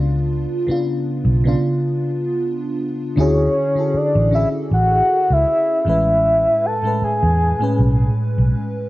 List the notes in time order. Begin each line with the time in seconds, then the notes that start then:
Already playing: C#2 C#3 B3 D4 F4
0.67 C#3 B3 D4, muted fingered electric bass stroke
0.71 F4
1.25 B1
1.44 C#3 B3 D4
1.48 F4
3.16 D2 D3 C#4 E4 F#4
3.20 G#4 C#5
3.75 D3 C#4 E4 F#4
3.80 A4
3.94 D5, muted fingered electric bass stroke
4.15 A1
4.31 D3 C#4 E4 F#4 E5
4.36 G#4
4.71 A1 F#5
5.30 C#2 E5
5.85 A1 A2 G#3 C#4
5.89 B4 E5
6.66 A5
6.82 A2 G#3 C#4
6.87 B4
7.02 G#5, muted fingered electric bass stroke
7.23 E2
7.59 A2 G#3 C#4
7.64 B4
7.79 B1
8.38 B1